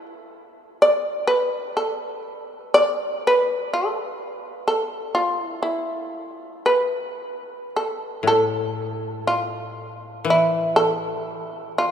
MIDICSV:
0, 0, Header, 1, 3, 480
1, 0, Start_track
1, 0, Tempo, 961538
1, 170, Time_signature, 4, 2, 24, 8
1, 2574, Tempo, 996678
1, 3054, Tempo, 1048951
1, 4014, Tempo, 998336
1, 5775, End_track
2, 0, Start_track
2, 0, Title_t, "Shamisen"
2, 0, Program_c, 0, 106
2, 409, Note_on_c, 0, 74, 69
2, 628, Note_off_c, 0, 74, 0
2, 636, Note_on_c, 0, 71, 70
2, 862, Note_off_c, 0, 71, 0
2, 882, Note_on_c, 0, 69, 51
2, 1107, Note_off_c, 0, 69, 0
2, 1369, Note_on_c, 0, 74, 78
2, 1593, Note_off_c, 0, 74, 0
2, 1633, Note_on_c, 0, 71, 69
2, 1847, Note_off_c, 0, 71, 0
2, 1865, Note_on_c, 0, 69, 51
2, 2081, Note_off_c, 0, 69, 0
2, 2334, Note_on_c, 0, 69, 65
2, 2559, Note_off_c, 0, 69, 0
2, 2569, Note_on_c, 0, 65, 64
2, 2699, Note_off_c, 0, 65, 0
2, 2699, Note_on_c, 0, 64, 64
2, 2793, Note_off_c, 0, 64, 0
2, 2800, Note_on_c, 0, 64, 52
2, 3285, Note_on_c, 0, 71, 58
2, 3757, Note_off_c, 0, 64, 0
2, 3760, Note_off_c, 0, 71, 0
2, 3792, Note_on_c, 0, 69, 46
2, 4003, Note_off_c, 0, 69, 0
2, 4025, Note_on_c, 0, 69, 62
2, 4483, Note_off_c, 0, 69, 0
2, 4506, Note_on_c, 0, 65, 61
2, 4966, Note_off_c, 0, 65, 0
2, 5000, Note_on_c, 0, 64, 67
2, 5213, Note_off_c, 0, 64, 0
2, 5221, Note_on_c, 0, 69, 72
2, 5677, Note_off_c, 0, 69, 0
2, 5713, Note_on_c, 0, 65, 61
2, 5775, Note_off_c, 0, 65, 0
2, 5775, End_track
3, 0, Start_track
3, 0, Title_t, "Koto"
3, 0, Program_c, 1, 107
3, 4004, Note_on_c, 1, 45, 46
3, 4973, Note_on_c, 1, 52, 46
3, 5452, Note_off_c, 1, 45, 0
3, 5775, Note_off_c, 1, 52, 0
3, 5775, End_track
0, 0, End_of_file